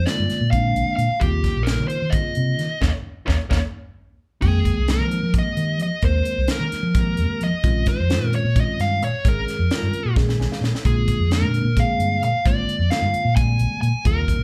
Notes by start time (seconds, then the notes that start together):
0.06 D3 G#3 A#3 C4 F4 D5, snare, closed hi-hat
0.19 G2
0.29 muted fingered electric bass stroke, snare, closed hi-hat
0.41 A#2
0.51 D3 G#3 A#3 C4 D4 F5, kick, closed hi-hat
0.75 A#1, closed hi-hat
0.96 A#2 F5, closed hi-hat
1.10 muted fingered electric bass stroke
1.20 D#2 C#3 G3 A#3 C4 F4 G4, kick, closed hi-hat
1.44 kick, snare, closed hi-hat
1.57 A#1
1.63 C#3 A#4, closed hi-hat
1.67 G3 A#3 C4 F4, snare
1.79 D#3
1.88 C5, closed hi-hat
2.02 D#3
2.10 C#3 G3 A#3 C4 D#5, kick, closed hi-hat
2.14 F4
2.35 C3, closed hi-hat
2.59 D#3, snare, closed hi-hat
2.81 D#2 A#3 C#4 D#4 A#4 C#5 D#5, kick, snare
3.27 D#2 A#3 C#4 D#4 A#4 C#5 D#5, kick, snare
3.50 D#2 A#3 C#4 D#4 A#4 C#5 D#5, kick, snare
4.42 F2 D#3 G#3 A#3 C4 G#4 G5, kick, crash
4.65 kick, closed hi-hat
4.77 C2
4.88 D#3 G#3 A#3 C4 D#4 A#4, snare, closed hi-hat
5.00 F3
5.11 closed hi-hat
5.23 F3
5.34 D#3 G#3 A#3 C4 G4, kick, closed hi-hat
5.39 D#5
5.57 D#3, closed hi-hat
5.79 F3 D#5, closed hi-hat
6.02 D#2 D#3 G#3 A#3 C4 A#4 C5, kick, closed hi-hat
6.25 closed hi-hat
6.38 C2
6.48 D#3 G#3 A#3 C4 D#4 A#4, snare, closed hi-hat
6.60 D#3
6.72 muted fingered electric bass stroke, snare, closed hi-hat
6.83 F3
6.94 D#3 G#3 A#3 C4 G4, kick, closed hi-hat
7.17 F2, closed hi-hat
7.41 F3 D#5, closed hi-hat
7.53 muted fingered electric bass stroke
7.63 A#1 D#3 G#3 C4 C#4 F4, kick, closed hi-hat
7.86 C5, kick, snare, closed hi-hat
8.00 F2
8.08 D#3 G#3 C4 C#4 F4, snare, closed hi-hat
8.22 A#2
8.33 C#5, closed hi-hat
8.44 A#2
8.55 D#3 G#3 C4 C#4 F4, kick, closed hi-hat
8.60 D#5
8.79 G2 F5, snare, closed hi-hat
9.02 A#2 C#5, closed hi-hat
9.25 G#1 D#3 G#3 C4 C#4 G#4 A#4, kick, closed hi-hat
9.48 snare, closed hi-hat
9.59 F2
9.71 D#3 G#3 C4 C#4 F4, snare, closed hi-hat
9.83 G2
9.93 muted fingered electric bass stroke, closed hi-hat
10.05 A#2
10.16 D#3 G#3 C4 C#4 G#4, kick, snare
10.29 snare
10.39 A#1 G#5, snare
10.52 F5, snare
10.61 A#2 C#5, snare
10.73 muted fingered electric bass stroke, snare
10.85 A#1 D3 G#3 A#3 C4 F4 G#4, kick, closed hi-hat
11.08 kick, closed hi-hat
11.20 F2
11.30 D3 G#3 A#3 C4 D4 A#4, snare, closed hi-hat
11.42 A#2
11.54 closed hi-hat
11.64 A#2
11.76 D3 G#3 A#3 C4 G#4 F5, kick, closed hi-hat
11.99 G2, closed hi-hat
12.23 A#2 F5, closed hi-hat
12.44 G#1 D3 G#3 A#3 C4 F4 D5, kick, closed hi-hat
12.69 closed hi-hat
12.79 F2
12.90 D3 G#3 A#3 C4 F4 F5, snare, closed hi-hat
13.02 G2
13.14 muted fingered electric bass stroke, closed hi-hat
13.25 A#2
13.36 D3 G3 G#3 A#3 C4 G#5, kick, closed hi-hat
13.59 A#1, closed hi-hat
13.71 muted fingered electric bass stroke
13.81 A#2 G#5, closed hi-hat
13.94 muted fingered electric bass stroke
14.04 D#2 C#3 G3 A#3 C4 F4 A#4, kick, closed hi-hat
14.28 kick, closed hi-hat
14.39 A#1